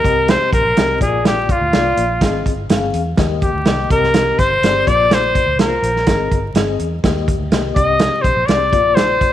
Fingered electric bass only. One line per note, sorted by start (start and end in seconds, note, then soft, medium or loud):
0.04 0.35 C2 loud
0.53 0.63 A#1 medium
0.65 0.75 A#1 medium
0.77 1.01 C2 medium
1.01 1.51 A#1 medium
1.61 1.71 D2 medium
1.73 1.93 C2 medium
1.97 2.18 A#1 medium
2.21 2.42 G#1 loud
2.46 2.66 G1 medium
2.70 2.90 G1 medium
2.93 3.14 E2 medium
3.18 3.49 D#2 loud
3.53 3.64 D2 medium
3.66 3.87 C2 medium
3.90 4.31 C2 loud
4.39 4.59 G1 medium
4.62 4.83 G1 medium
4.87 5.38 A#1 medium
5.46 5.58 D2 medium
5.58 5.79 C2 loud
5.82 6.03 A#1 medium
6.07 6.27 G#1 loud
6.31 6.52 G1 medium
6.54 6.75 G1 medium
6.79 7.00 E2 medium
7.04 7.34 D#2 medium
7.38 7.49 D2 medium
7.51 7.72 C2 medium
7.76 8.07 C2 medium
8.24 8.35 A#1 medium
8.35 8.46 A#1 medium
8.47 8.73 C2 medium
8.73 9.24 A#1 medium